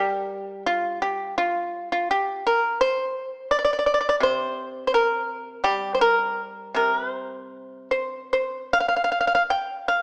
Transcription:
0.00 2.09 G3 soft
0.00 0.62 G4 medium
0.66 0.99 F4 medium
1.02 1.35 G4 medium
1.38 1.88 F4 medium
1.92 2.09 F4 medium
2.11 2.43 G4 medium
2.47 2.79 A#4 medium
2.81 3.48 C5 medium
3.51 3.57 D5 medium
3.59 3.63 D5 soft
3.65 3.72 D5 medium
3.73 3.78 D5 soft
3.79 3.85 D5 soft
3.86 3.93 D5 soft
3.94 3.99 D5 medium
4.01 4.07 D5 soft
4.09 4.15 D5 medium
4.20 6.39 C3 medium
4.20 4.83 C5 medium
4.87 4.94 C5 medium
4.94 5.62 A#4 medium
5.64 7.91 G3 soft
5.64 5.93 G4 medium
5.94 6.01 C5 soft
6.01 6.72 A#4 medium
6.74 9.10 C3 soft
6.74 6.97 A#4 medium
6.97 7.09 B4 medium
7.09 7.88 C5 medium
7.91 8.29 C5 medium
8.33 8.70 C5 medium
8.73 8.79 F5 medium
8.80 8.87 F5 soft
8.88 8.95 F5 medium
8.96 9.03 F5 soft
9.04 9.10 F5 medium
9.12 9.19 F5 soft
9.21 9.26 F5 soft
9.27 9.34 F5 soft
9.35 9.42 F5 medium
9.50 9.86 G5 medium
9.88 10.02 F5 medium

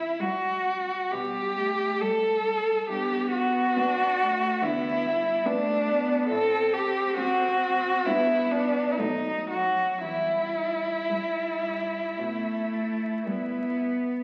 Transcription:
0.00 0.22 E4 medium
0.20 0.89 G3 soft
0.20 1.13 F#4 medium
1.11 1.84 B2 medium
1.11 1.58 G3 soft
1.11 2.02 G4 medium
1.57 2.03 A3 soft
2.01 2.90 G3 soft
2.01 2.69 G3 soft
2.01 2.90 A4 medium
2.89 3.59 G2 soft
2.89 3.79 B3 soft
2.89 3.32 G4 medium
3.33 4.64 F#4 medium
3.77 4.42 B3 soft
3.77 4.24 D4 medium
4.22 4.64 A3 medium
4.62 5.30 D2 medium
4.62 5.06 B3 soft
4.62 5.47 E4 medium
5.05 5.47 G3 soft
5.46 5.90 A3 medium
5.46 6.10 B3 medium
5.46 6.29 D4 medium
5.89 6.31 B3 medium
6.29 7.00 A2 medium
6.29 8.07 C4 medium
6.29 6.75 A4 medium
6.73 7.16 G4 medium
7.17 7.83 C4 medium
7.17 8.07 F#4 medium
8.05 8.81 G2 medium
8.05 8.99 B3 medium
8.05 8.77 B3 medium
8.05 8.52 E4 medium
8.51 8.93 D4 medium
8.91 9.01 E4 soft
8.98 9.83 B2 medium
8.98 10.04 F#3 soft
8.98 9.77 A3 soft
8.98 9.50 D#4 medium
9.50 10.02 F#4 medium
10.02 10.90 E2 soft
10.02 11.00 G3 soft
10.02 13.77 E4 medium
11.10 11.93 G3 soft
11.10 12.19 G3 soft
12.18 13.06 B2 medium
12.18 13.26 A3 medium
13.25 14.09 G3 soft
13.25 14.23 B3 medium

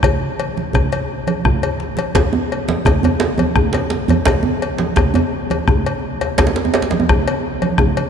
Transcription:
0.03 bombo rim medium
0.03 bombo low medium
0.03 cowbell medium
0.03 high conga soft
0.03 low conga medium
0.03 djembe bass medium
0.21 bombo rim soft
0.39 cowbell soft
0.39 djembe slap soft
0.39 high conga soft
0.57 djembe tone medium
0.57 high conga soft
0.73 bombo rim medium
0.73 bombo low loud
0.73 cowbell soft
0.73 high conga soft
0.73 djembe bass medium
0.73 low conga medium
0.92 cowbell soft
0.92 djembe slap medium
1.27 bombo rim soft
1.27 cowbell soft
1.27 high conga medium
1.27 djembe tone soft
1.44 bombo rim medium
1.44 bombo low medium
1.44 djembe bass soft
1.44 low conga medium
1.62 cowbell soft
1.62 djembe bass soft
1.80 djembe slap medium
1.97 cowbell soft
1.97 djembe slap medium
1.97 high conga soft
2.15 bombo rim medium
2.15 bombo low medium
2.15 cowbell medium
2.15 djembe slap loud
2.15 djembe bass medium
2.15 low conga medium
2.33 djembe tone medium
2.52 bombo rim soft
2.52 cowbell soft
2.68 djembe slap medium
2.68 djembe tone medium
2.68 high conga medium
2.85 bombo rim medium
2.85 bombo low loud
2.85 cowbell soft
2.85 djembe slap medium
2.85 djembe bass medium
2.85 low conga medium
3.03 cowbell soft
3.03 djembe slap medium
3.03 djembe bass medium
3.20 djembe slap loud
3.38 cowbell soft
3.38 djembe tone medium
3.38 high conga medium
3.56 bombo rim medium
3.56 bombo low medium
3.56 low conga medium
3.56 djembe bass medium
3.73 cowbell soft
3.73 djembe slap medium
3.90 djembe slap medium
4.08 cowbell soft
4.08 djembe slap medium
4.08 high conga medium
4.08 djembe tone medium
4.08 djembe bass medium
4.25 bombo rim loud
4.25 bombo low loud
4.25 cowbell medium
4.25 djembe slap loud
4.25 low conga medium
4.25 djembe bass medium
4.43 djembe tone medium
4.62 bombo rim soft
4.62 cowbell soft
4.78 djembe slap medium
4.78 high conga soft
4.78 djembe tone medium
4.96 bombo rim loud
4.96 bombo low loud
4.96 cowbell soft
4.96 djembe slap medium
4.96 djembe bass medium
4.96 low conga medium
5.14 cowbell soft
5.14 djembe slap medium
5.14 djembe bass medium
5.50 cowbell soft
5.50 high conga medium
5.50 djembe tone medium
5.68 bombo rim loud
5.68 bombo low loud
5.68 low conga medium
5.68 djembe bass medium
5.86 cowbell soft
6.21 cowbell soft
6.21 djembe slap medium
6.21 djembe tone medium
6.38 bombo rim loud
6.38 bombo low medium
6.38 cowbell medium
6.38 djembe slap loud
6.38 djembe bass medium
6.38 low conga medium
6.47 djembe slap medium
6.56 djembe slap medium
6.65 djembe tone medium
6.73 bombo rim soft
6.73 cowbell medium
6.73 djembe slap medium
6.82 djembe slap medium
6.91 djembe slap medium
6.91 djembe tone medium
6.91 high conga medium
7.00 djembe tone medium
7.09 bombo rim loud
7.09 bombo low loud
7.09 cowbell soft
7.09 low conga medium
7.09 djembe bass medium
7.28 cowbell medium
7.28 djembe slap medium
7.62 cowbell soft
7.62 high conga medium
7.62 djembe tone medium
7.78 bombo rim loud
7.78 bombo low loud
7.78 low conga medium
7.78 djembe bass medium
7.97 cowbell soft

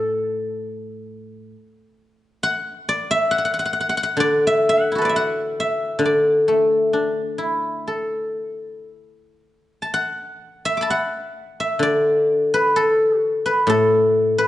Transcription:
0.00 1.53 A2 soft
0.00 1.93 A4 medium
0.00 0.87 B4 soft
0.00 0.62 D5 soft
0.00 0.46 E5 soft
0.00 0.33 F#5 soft
0.00 0.13 A5 soft
2.43 3.31 F#5 medium
2.89 4.20 D5 medium
3.11 4.47 E5 medium
3.31 3.38 F#5 medium
3.38 3.45 F#5 medium
3.45 3.53 F#5 medium
3.54 3.59 F#5 soft
3.59 3.65 F#5 medium
3.65 3.73 F#5 soft
3.73 3.80 F#5 soft
3.81 3.89 F#5 medium
3.89 3.97 F#5 medium
3.97 4.03 F#5 medium
4.03 4.69 F#5 medium
4.17 5.98 D3 soft
4.17 5.05 D5 medium
4.47 5.09 E5 medium
4.69 5.16 F#5 medium
4.92 7.38 E4 soft
4.92 7.38 F#4 soft
4.98 7.18 A4 soft
4.98 7.06 B4 soft
5.05 6.05 D5 soft
5.09 5.60 E5 soft
5.16 6.76 F#5 medium
5.60 7.32 E5 medium
5.99 8.86 D3 soft
6.05 9.38 D5 medium
6.48 8.36 A3 soft
6.93 8.88 D4 soft
7.38 9.40 E4 soft
7.88 9.91 A4 soft
9.82 10.82 A5 soft
9.94 10.90 F#5 medium
10.65 11.60 E5 medium
10.77 12.16 B5 soft
10.77 11.99 D6 soft
10.82 12.27 A5 soft
10.90 12.51 F#5 medium
11.60 13.32 E5 medium
11.79 14.48 D3 soft
11.79 13.67 D5 medium
12.54 13.45 B4 medium
12.76 13.20 A4 medium
13.20 13.69 F#4 medium
13.46 14.38 B4 medium
13.67 14.48 A2 soft
13.67 14.48 A4 medium
14.38 14.48 B4 medium

